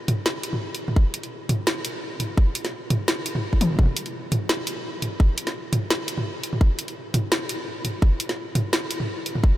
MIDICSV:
0, 0, Header, 1, 2, 480
1, 0, Start_track
1, 0, Tempo, 352941
1, 1311, Time_signature, 4, 2, 24, 8
1, 13022, End_track
2, 0, Start_track
2, 0, Title_t, "Drums"
2, 112, Note_on_c, 9, 42, 64
2, 112, Note_on_c, 9, 45, 79
2, 248, Note_off_c, 9, 42, 0
2, 248, Note_off_c, 9, 45, 0
2, 350, Note_on_c, 9, 38, 115
2, 486, Note_off_c, 9, 38, 0
2, 591, Note_on_c, 9, 42, 74
2, 719, Note_on_c, 9, 45, 52
2, 727, Note_off_c, 9, 42, 0
2, 855, Note_off_c, 9, 45, 0
2, 1014, Note_on_c, 9, 42, 62
2, 1150, Note_off_c, 9, 42, 0
2, 1197, Note_on_c, 9, 45, 54
2, 1311, Note_on_c, 9, 36, 112
2, 1333, Note_off_c, 9, 45, 0
2, 1447, Note_off_c, 9, 36, 0
2, 1549, Note_on_c, 9, 42, 79
2, 1679, Note_off_c, 9, 42, 0
2, 1679, Note_on_c, 9, 42, 36
2, 1815, Note_off_c, 9, 42, 0
2, 2031, Note_on_c, 9, 42, 66
2, 2031, Note_on_c, 9, 45, 81
2, 2167, Note_off_c, 9, 42, 0
2, 2167, Note_off_c, 9, 45, 0
2, 2270, Note_on_c, 9, 38, 117
2, 2406, Note_off_c, 9, 38, 0
2, 2511, Note_on_c, 9, 42, 75
2, 2647, Note_off_c, 9, 42, 0
2, 2991, Note_on_c, 9, 42, 66
2, 2991, Note_on_c, 9, 45, 40
2, 3127, Note_off_c, 9, 42, 0
2, 3127, Note_off_c, 9, 45, 0
2, 3230, Note_on_c, 9, 36, 122
2, 3366, Note_off_c, 9, 36, 0
2, 3470, Note_on_c, 9, 42, 80
2, 3599, Note_off_c, 9, 42, 0
2, 3599, Note_on_c, 9, 38, 35
2, 3599, Note_on_c, 9, 42, 36
2, 3735, Note_off_c, 9, 38, 0
2, 3735, Note_off_c, 9, 42, 0
2, 3950, Note_on_c, 9, 42, 66
2, 3950, Note_on_c, 9, 45, 83
2, 4086, Note_off_c, 9, 42, 0
2, 4086, Note_off_c, 9, 45, 0
2, 4189, Note_on_c, 9, 38, 119
2, 4325, Note_off_c, 9, 38, 0
2, 4431, Note_on_c, 9, 42, 81
2, 4558, Note_on_c, 9, 45, 54
2, 4567, Note_off_c, 9, 42, 0
2, 4694, Note_off_c, 9, 45, 0
2, 4798, Note_on_c, 9, 36, 58
2, 4910, Note_on_c, 9, 42, 69
2, 4910, Note_on_c, 9, 48, 62
2, 4934, Note_off_c, 9, 36, 0
2, 5041, Note_on_c, 9, 45, 26
2, 5046, Note_off_c, 9, 42, 0
2, 5046, Note_off_c, 9, 48, 0
2, 5068, Note_off_c, 9, 45, 0
2, 5068, Note_on_c, 9, 45, 28
2, 5095, Note_off_c, 9, 45, 0
2, 5095, Note_on_c, 9, 45, 33
2, 5124, Note_off_c, 9, 45, 0
2, 5124, Note_on_c, 9, 45, 35
2, 5150, Note_off_c, 9, 45, 0
2, 5150, Note_on_c, 9, 36, 118
2, 5150, Note_on_c, 9, 45, 40
2, 5181, Note_off_c, 9, 45, 0
2, 5181, Note_on_c, 9, 45, 41
2, 5215, Note_off_c, 9, 45, 0
2, 5215, Note_on_c, 9, 45, 47
2, 5245, Note_off_c, 9, 45, 0
2, 5245, Note_on_c, 9, 45, 50
2, 5286, Note_off_c, 9, 36, 0
2, 5381, Note_off_c, 9, 45, 0
2, 5393, Note_on_c, 9, 42, 84
2, 5519, Note_off_c, 9, 42, 0
2, 5519, Note_on_c, 9, 42, 37
2, 5655, Note_off_c, 9, 42, 0
2, 5873, Note_on_c, 9, 42, 67
2, 5873, Note_on_c, 9, 45, 82
2, 6009, Note_off_c, 9, 42, 0
2, 6009, Note_off_c, 9, 45, 0
2, 6111, Note_on_c, 9, 38, 127
2, 6247, Note_off_c, 9, 38, 0
2, 6351, Note_on_c, 9, 42, 79
2, 6487, Note_off_c, 9, 42, 0
2, 6831, Note_on_c, 9, 42, 70
2, 6831, Note_on_c, 9, 45, 38
2, 6967, Note_off_c, 9, 42, 0
2, 6967, Note_off_c, 9, 45, 0
2, 7071, Note_on_c, 9, 36, 127
2, 7207, Note_off_c, 9, 36, 0
2, 7312, Note_on_c, 9, 42, 85
2, 7438, Note_off_c, 9, 42, 0
2, 7438, Note_on_c, 9, 38, 38
2, 7438, Note_on_c, 9, 42, 39
2, 7574, Note_off_c, 9, 38, 0
2, 7574, Note_off_c, 9, 42, 0
2, 7788, Note_on_c, 9, 42, 69
2, 7788, Note_on_c, 9, 45, 80
2, 7924, Note_off_c, 9, 42, 0
2, 7924, Note_off_c, 9, 45, 0
2, 8030, Note_on_c, 9, 38, 125
2, 8166, Note_off_c, 9, 38, 0
2, 8269, Note_on_c, 9, 42, 81
2, 8399, Note_on_c, 9, 45, 52
2, 8405, Note_off_c, 9, 42, 0
2, 8535, Note_off_c, 9, 45, 0
2, 8751, Note_on_c, 9, 42, 72
2, 8879, Note_on_c, 9, 45, 57
2, 8887, Note_off_c, 9, 42, 0
2, 8989, Note_on_c, 9, 36, 127
2, 9015, Note_off_c, 9, 45, 0
2, 9125, Note_off_c, 9, 36, 0
2, 9230, Note_on_c, 9, 42, 85
2, 9358, Note_off_c, 9, 42, 0
2, 9358, Note_on_c, 9, 42, 39
2, 9494, Note_off_c, 9, 42, 0
2, 9712, Note_on_c, 9, 42, 68
2, 9712, Note_on_c, 9, 45, 79
2, 9848, Note_off_c, 9, 42, 0
2, 9848, Note_off_c, 9, 45, 0
2, 9951, Note_on_c, 9, 38, 127
2, 10087, Note_off_c, 9, 38, 0
2, 10191, Note_on_c, 9, 42, 81
2, 10327, Note_off_c, 9, 42, 0
2, 10671, Note_on_c, 9, 42, 70
2, 10671, Note_on_c, 9, 45, 37
2, 10807, Note_off_c, 9, 42, 0
2, 10807, Note_off_c, 9, 45, 0
2, 10910, Note_on_c, 9, 36, 123
2, 11046, Note_off_c, 9, 36, 0
2, 11152, Note_on_c, 9, 42, 81
2, 11278, Note_off_c, 9, 42, 0
2, 11278, Note_on_c, 9, 38, 38
2, 11278, Note_on_c, 9, 42, 35
2, 11414, Note_off_c, 9, 38, 0
2, 11414, Note_off_c, 9, 42, 0
2, 11632, Note_on_c, 9, 42, 67
2, 11632, Note_on_c, 9, 45, 77
2, 11768, Note_off_c, 9, 42, 0
2, 11768, Note_off_c, 9, 45, 0
2, 11872, Note_on_c, 9, 38, 127
2, 12008, Note_off_c, 9, 38, 0
2, 12112, Note_on_c, 9, 42, 73
2, 12242, Note_on_c, 9, 45, 50
2, 12248, Note_off_c, 9, 42, 0
2, 12378, Note_off_c, 9, 45, 0
2, 12595, Note_on_c, 9, 42, 68
2, 12721, Note_on_c, 9, 45, 53
2, 12731, Note_off_c, 9, 42, 0
2, 12832, Note_on_c, 9, 36, 123
2, 12857, Note_off_c, 9, 45, 0
2, 12968, Note_off_c, 9, 36, 0
2, 13022, End_track
0, 0, End_of_file